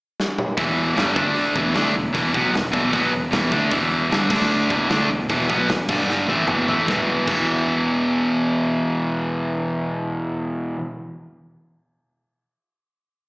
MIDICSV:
0, 0, Header, 1, 4, 480
1, 0, Start_track
1, 0, Key_signature, 1, "minor"
1, 0, Tempo, 393959
1, 693, Time_signature, 4, 2, 24, 8
1, 16182, End_track
2, 0, Start_track
2, 0, Title_t, "Distorted electric guitar"
2, 0, Program_c, 0, 30
2, 698, Note_on_c, 0, 40, 99
2, 704, Note_on_c, 0, 47, 101
2, 715, Note_on_c, 0, 52, 106
2, 1167, Note_off_c, 0, 40, 0
2, 1169, Note_off_c, 0, 47, 0
2, 1174, Note_on_c, 0, 43, 88
2, 1175, Note_off_c, 0, 52, 0
2, 1182, Note_on_c, 0, 50, 89
2, 1190, Note_on_c, 0, 55, 92
2, 1393, Note_off_c, 0, 50, 0
2, 1405, Note_off_c, 0, 43, 0
2, 1407, Note_on_c, 0, 50, 103
2, 1419, Note_off_c, 0, 55, 0
2, 1419, Note_on_c, 0, 57, 89
2, 1420, Note_on_c, 0, 62, 94
2, 1880, Note_off_c, 0, 50, 0
2, 1886, Note_off_c, 0, 57, 0
2, 1886, Note_off_c, 0, 62, 0
2, 1889, Note_on_c, 0, 40, 92
2, 1900, Note_on_c, 0, 47, 106
2, 1911, Note_on_c, 0, 52, 110
2, 2121, Note_off_c, 0, 40, 0
2, 2126, Note_off_c, 0, 47, 0
2, 2131, Note_on_c, 0, 50, 95
2, 2132, Note_off_c, 0, 52, 0
2, 2143, Note_on_c, 0, 57, 99
2, 2150, Note_on_c, 0, 62, 96
2, 2362, Note_off_c, 0, 50, 0
2, 2368, Note_off_c, 0, 57, 0
2, 2370, Note_on_c, 0, 40, 72
2, 2371, Note_off_c, 0, 62, 0
2, 2375, Note_on_c, 0, 47, 78
2, 2560, Note_off_c, 0, 40, 0
2, 2563, Note_off_c, 0, 47, 0
2, 2606, Note_on_c, 0, 40, 95
2, 2614, Note_on_c, 0, 47, 98
2, 2627, Note_on_c, 0, 52, 117
2, 2834, Note_off_c, 0, 47, 0
2, 2839, Note_off_c, 0, 40, 0
2, 2848, Note_on_c, 0, 47, 87
2, 2849, Note_off_c, 0, 52, 0
2, 2864, Note_on_c, 0, 54, 94
2, 2870, Note_on_c, 0, 59, 107
2, 3076, Note_off_c, 0, 47, 0
2, 3084, Note_on_c, 0, 40, 59
2, 3087, Note_off_c, 0, 54, 0
2, 3091, Note_off_c, 0, 59, 0
2, 3091, Note_on_c, 0, 47, 66
2, 3277, Note_off_c, 0, 40, 0
2, 3280, Note_off_c, 0, 47, 0
2, 3332, Note_on_c, 0, 40, 88
2, 3342, Note_on_c, 0, 47, 93
2, 3351, Note_on_c, 0, 52, 101
2, 3550, Note_off_c, 0, 47, 0
2, 3561, Note_off_c, 0, 40, 0
2, 3565, Note_on_c, 0, 47, 96
2, 3570, Note_off_c, 0, 52, 0
2, 3575, Note_on_c, 0, 54, 85
2, 3582, Note_on_c, 0, 59, 88
2, 3798, Note_off_c, 0, 47, 0
2, 3803, Note_off_c, 0, 54, 0
2, 3806, Note_off_c, 0, 59, 0
2, 3826, Note_on_c, 0, 40, 65
2, 3828, Note_on_c, 0, 47, 80
2, 4007, Note_off_c, 0, 40, 0
2, 4009, Note_off_c, 0, 47, 0
2, 4050, Note_on_c, 0, 40, 91
2, 4063, Note_on_c, 0, 47, 90
2, 4073, Note_on_c, 0, 52, 95
2, 4280, Note_off_c, 0, 40, 0
2, 4281, Note_off_c, 0, 47, 0
2, 4286, Note_on_c, 0, 50, 102
2, 4291, Note_off_c, 0, 52, 0
2, 4296, Note_on_c, 0, 62, 98
2, 4297, Note_on_c, 0, 57, 89
2, 4518, Note_off_c, 0, 50, 0
2, 4523, Note_off_c, 0, 62, 0
2, 4524, Note_off_c, 0, 57, 0
2, 4525, Note_on_c, 0, 40, 98
2, 4534, Note_on_c, 0, 47, 91
2, 4546, Note_on_c, 0, 52, 108
2, 4992, Note_off_c, 0, 40, 0
2, 4996, Note_off_c, 0, 47, 0
2, 4997, Note_on_c, 0, 43, 80
2, 5000, Note_on_c, 0, 50, 92
2, 5006, Note_off_c, 0, 52, 0
2, 5011, Note_on_c, 0, 55, 95
2, 5218, Note_off_c, 0, 50, 0
2, 5233, Note_on_c, 0, 50, 96
2, 5234, Note_off_c, 0, 43, 0
2, 5240, Note_off_c, 0, 55, 0
2, 5245, Note_on_c, 0, 57, 101
2, 5256, Note_on_c, 0, 62, 94
2, 5713, Note_off_c, 0, 50, 0
2, 5716, Note_on_c, 0, 40, 95
2, 5719, Note_off_c, 0, 57, 0
2, 5723, Note_on_c, 0, 47, 112
2, 5725, Note_off_c, 0, 62, 0
2, 5733, Note_on_c, 0, 52, 99
2, 5955, Note_off_c, 0, 40, 0
2, 5957, Note_off_c, 0, 47, 0
2, 5962, Note_on_c, 0, 50, 95
2, 5963, Note_off_c, 0, 52, 0
2, 5971, Note_on_c, 0, 57, 108
2, 5982, Note_on_c, 0, 62, 95
2, 6198, Note_off_c, 0, 50, 0
2, 6202, Note_off_c, 0, 57, 0
2, 6208, Note_off_c, 0, 62, 0
2, 6209, Note_on_c, 0, 40, 63
2, 6222, Note_on_c, 0, 47, 77
2, 6401, Note_off_c, 0, 40, 0
2, 6407, Note_off_c, 0, 47, 0
2, 6442, Note_on_c, 0, 40, 89
2, 6450, Note_on_c, 0, 47, 97
2, 6460, Note_on_c, 0, 52, 113
2, 6671, Note_off_c, 0, 47, 0
2, 6679, Note_off_c, 0, 40, 0
2, 6685, Note_on_c, 0, 47, 93
2, 6686, Note_off_c, 0, 52, 0
2, 6691, Note_on_c, 0, 54, 97
2, 6700, Note_on_c, 0, 59, 106
2, 6916, Note_off_c, 0, 47, 0
2, 6924, Note_off_c, 0, 54, 0
2, 6925, Note_on_c, 0, 40, 73
2, 6928, Note_off_c, 0, 59, 0
2, 6931, Note_on_c, 0, 47, 76
2, 7120, Note_off_c, 0, 40, 0
2, 7123, Note_off_c, 0, 47, 0
2, 7172, Note_on_c, 0, 43, 92
2, 7179, Note_on_c, 0, 50, 99
2, 7183, Note_on_c, 0, 55, 104
2, 7637, Note_off_c, 0, 50, 0
2, 7642, Note_on_c, 0, 45, 104
2, 7645, Note_off_c, 0, 55, 0
2, 7646, Note_off_c, 0, 43, 0
2, 7650, Note_on_c, 0, 52, 104
2, 7661, Note_on_c, 0, 57, 120
2, 7881, Note_off_c, 0, 45, 0
2, 7885, Note_off_c, 0, 52, 0
2, 7887, Note_on_c, 0, 40, 89
2, 7891, Note_off_c, 0, 57, 0
2, 7891, Note_on_c, 0, 47, 91
2, 7906, Note_on_c, 0, 52, 108
2, 8124, Note_off_c, 0, 40, 0
2, 8125, Note_off_c, 0, 52, 0
2, 8126, Note_off_c, 0, 47, 0
2, 8132, Note_on_c, 0, 45, 94
2, 8140, Note_on_c, 0, 52, 91
2, 8147, Note_on_c, 0, 57, 99
2, 8358, Note_on_c, 0, 40, 92
2, 8367, Note_off_c, 0, 45, 0
2, 8371, Note_off_c, 0, 52, 0
2, 8374, Note_off_c, 0, 57, 0
2, 8384, Note_on_c, 0, 47, 97
2, 8404, Note_on_c, 0, 52, 106
2, 8836, Note_off_c, 0, 40, 0
2, 8841, Note_on_c, 0, 40, 90
2, 8863, Note_off_c, 0, 47, 0
2, 8868, Note_on_c, 0, 47, 89
2, 8891, Note_off_c, 0, 52, 0
2, 8896, Note_on_c, 0, 52, 99
2, 13106, Note_off_c, 0, 40, 0
2, 13132, Note_off_c, 0, 47, 0
2, 13160, Note_off_c, 0, 52, 0
2, 16182, End_track
3, 0, Start_track
3, 0, Title_t, "Picked electric bass"
3, 0, Program_c, 1, 34
3, 700, Note_on_c, 1, 28, 94
3, 1141, Note_off_c, 1, 28, 0
3, 1162, Note_on_c, 1, 31, 98
3, 1388, Note_off_c, 1, 31, 0
3, 1416, Note_on_c, 1, 38, 100
3, 1858, Note_off_c, 1, 38, 0
3, 1899, Note_on_c, 1, 28, 94
3, 2117, Note_off_c, 1, 28, 0
3, 2127, Note_on_c, 1, 38, 93
3, 2350, Note_off_c, 1, 38, 0
3, 2380, Note_on_c, 1, 28, 74
3, 2597, Note_off_c, 1, 28, 0
3, 2614, Note_on_c, 1, 28, 96
3, 2834, Note_off_c, 1, 28, 0
3, 2855, Note_on_c, 1, 35, 105
3, 3074, Note_off_c, 1, 35, 0
3, 3111, Note_on_c, 1, 28, 90
3, 3322, Note_off_c, 1, 28, 0
3, 3336, Note_on_c, 1, 28, 111
3, 3554, Note_off_c, 1, 28, 0
3, 3569, Note_on_c, 1, 35, 98
3, 3791, Note_off_c, 1, 35, 0
3, 3805, Note_on_c, 1, 28, 79
3, 4028, Note_off_c, 1, 28, 0
3, 4040, Note_on_c, 1, 28, 97
3, 4265, Note_off_c, 1, 28, 0
3, 4286, Note_on_c, 1, 38, 93
3, 4509, Note_off_c, 1, 38, 0
3, 4523, Note_on_c, 1, 28, 94
3, 4970, Note_off_c, 1, 28, 0
3, 5001, Note_on_c, 1, 31, 102
3, 5227, Note_off_c, 1, 31, 0
3, 5240, Note_on_c, 1, 38, 105
3, 5690, Note_off_c, 1, 38, 0
3, 5730, Note_on_c, 1, 28, 93
3, 5952, Note_off_c, 1, 28, 0
3, 5977, Note_on_c, 1, 38, 91
3, 6196, Note_off_c, 1, 38, 0
3, 6222, Note_on_c, 1, 28, 75
3, 6439, Note_off_c, 1, 28, 0
3, 6454, Note_on_c, 1, 28, 95
3, 6675, Note_off_c, 1, 28, 0
3, 6693, Note_on_c, 1, 35, 96
3, 6915, Note_off_c, 1, 35, 0
3, 6942, Note_on_c, 1, 28, 86
3, 7160, Note_off_c, 1, 28, 0
3, 7176, Note_on_c, 1, 31, 103
3, 7622, Note_off_c, 1, 31, 0
3, 7658, Note_on_c, 1, 33, 92
3, 7880, Note_off_c, 1, 33, 0
3, 7897, Note_on_c, 1, 28, 99
3, 8119, Note_off_c, 1, 28, 0
3, 8128, Note_on_c, 1, 33, 93
3, 8355, Note_off_c, 1, 33, 0
3, 8386, Note_on_c, 1, 28, 96
3, 8516, Note_off_c, 1, 28, 0
3, 8867, Note_on_c, 1, 28, 100
3, 12507, Note_off_c, 1, 28, 0
3, 16182, End_track
4, 0, Start_track
4, 0, Title_t, "Drums"
4, 239, Note_on_c, 9, 38, 78
4, 361, Note_off_c, 9, 38, 0
4, 468, Note_on_c, 9, 47, 81
4, 590, Note_off_c, 9, 47, 0
4, 701, Note_on_c, 9, 36, 110
4, 706, Note_on_c, 9, 46, 57
4, 823, Note_off_c, 9, 36, 0
4, 828, Note_off_c, 9, 46, 0
4, 1178, Note_on_c, 9, 46, 61
4, 1192, Note_on_c, 9, 38, 93
4, 1300, Note_off_c, 9, 46, 0
4, 1314, Note_off_c, 9, 38, 0
4, 1416, Note_on_c, 9, 36, 114
4, 1538, Note_off_c, 9, 36, 0
4, 1656, Note_on_c, 9, 46, 66
4, 1778, Note_off_c, 9, 46, 0
4, 1896, Note_on_c, 9, 36, 104
4, 2018, Note_off_c, 9, 36, 0
4, 2125, Note_on_c, 9, 46, 66
4, 2140, Note_on_c, 9, 38, 111
4, 2247, Note_off_c, 9, 46, 0
4, 2262, Note_off_c, 9, 38, 0
4, 2616, Note_on_c, 9, 36, 110
4, 2619, Note_on_c, 9, 46, 61
4, 2738, Note_off_c, 9, 36, 0
4, 2741, Note_off_c, 9, 46, 0
4, 2855, Note_on_c, 9, 36, 107
4, 2977, Note_off_c, 9, 36, 0
4, 3099, Note_on_c, 9, 46, 61
4, 3113, Note_on_c, 9, 38, 97
4, 3220, Note_off_c, 9, 46, 0
4, 3226, Note_off_c, 9, 38, 0
4, 3226, Note_on_c, 9, 38, 34
4, 3332, Note_on_c, 9, 36, 102
4, 3348, Note_off_c, 9, 38, 0
4, 3454, Note_off_c, 9, 36, 0
4, 3572, Note_on_c, 9, 46, 56
4, 3573, Note_on_c, 9, 36, 105
4, 3693, Note_off_c, 9, 46, 0
4, 3695, Note_off_c, 9, 36, 0
4, 4045, Note_on_c, 9, 46, 64
4, 4060, Note_on_c, 9, 38, 125
4, 4167, Note_off_c, 9, 46, 0
4, 4182, Note_off_c, 9, 38, 0
4, 4287, Note_on_c, 9, 36, 91
4, 4409, Note_off_c, 9, 36, 0
4, 4524, Note_on_c, 9, 46, 57
4, 4525, Note_on_c, 9, 36, 110
4, 4646, Note_off_c, 9, 46, 0
4, 4647, Note_off_c, 9, 36, 0
4, 5011, Note_on_c, 9, 46, 55
4, 5026, Note_on_c, 9, 38, 105
4, 5133, Note_off_c, 9, 46, 0
4, 5147, Note_off_c, 9, 38, 0
4, 5237, Note_on_c, 9, 49, 101
4, 5245, Note_on_c, 9, 36, 110
4, 5359, Note_off_c, 9, 49, 0
4, 5367, Note_off_c, 9, 36, 0
4, 5730, Note_on_c, 9, 36, 99
4, 5852, Note_off_c, 9, 36, 0
4, 5964, Note_on_c, 9, 46, 61
4, 5979, Note_on_c, 9, 38, 110
4, 6086, Note_off_c, 9, 46, 0
4, 6101, Note_off_c, 9, 38, 0
4, 6449, Note_on_c, 9, 46, 69
4, 6453, Note_on_c, 9, 36, 101
4, 6570, Note_off_c, 9, 46, 0
4, 6575, Note_off_c, 9, 36, 0
4, 6696, Note_on_c, 9, 36, 99
4, 6818, Note_off_c, 9, 36, 0
4, 6927, Note_on_c, 9, 46, 58
4, 6942, Note_on_c, 9, 38, 102
4, 7049, Note_off_c, 9, 46, 0
4, 7064, Note_off_c, 9, 38, 0
4, 7170, Note_on_c, 9, 49, 94
4, 7175, Note_on_c, 9, 36, 105
4, 7291, Note_off_c, 9, 49, 0
4, 7297, Note_off_c, 9, 36, 0
4, 7431, Note_on_c, 9, 38, 65
4, 7552, Note_off_c, 9, 38, 0
4, 7654, Note_on_c, 9, 48, 63
4, 7775, Note_off_c, 9, 48, 0
4, 7891, Note_on_c, 9, 45, 93
4, 8013, Note_off_c, 9, 45, 0
4, 8143, Note_on_c, 9, 43, 84
4, 8265, Note_off_c, 9, 43, 0
4, 8386, Note_on_c, 9, 36, 105
4, 8401, Note_on_c, 9, 38, 85
4, 8508, Note_off_c, 9, 36, 0
4, 8523, Note_off_c, 9, 38, 0
4, 8864, Note_on_c, 9, 36, 98
4, 8864, Note_on_c, 9, 57, 85
4, 8986, Note_off_c, 9, 36, 0
4, 8986, Note_off_c, 9, 57, 0
4, 16182, End_track
0, 0, End_of_file